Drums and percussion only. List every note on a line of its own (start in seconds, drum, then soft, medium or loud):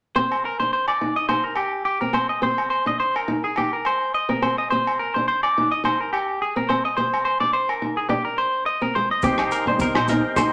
0.32 low agogo medium
0.88 low agogo medium
1.29 low agogo medium
1.56 low agogo medium
2.13 low agogo medium
2.58 low agogo medium
3.16 low agogo medium
3.56 low agogo medium
3.85 low agogo medium
4.42 low agogo medium
4.87 low agogo medium
5.43 low agogo medium
5.85 low agogo medium
6.14 low agogo medium
6.70 low agogo medium
7.14 low agogo medium
7.69 low agogo medium
9.22 kick medium
9.22 muted conga soft
9.22 maracas medium
9.38 cross-stick medium
9.38 low agogo medium
9.51 closed hi-hat soft
9.51 maracas medium
9.79 kick medium
9.79 high conga medium
9.79 maracas medium
9.95 cross-stick medium
9.95 low agogo medium
10.08 closed hi-hat soft
10.08 muted conga soft
10.08 high conga medium
10.08 maracas medium
10.36 kick medium
10.36 cross-stick medium
10.36 muted conga soft
10.36 low agogo medium
10.36 maracas loud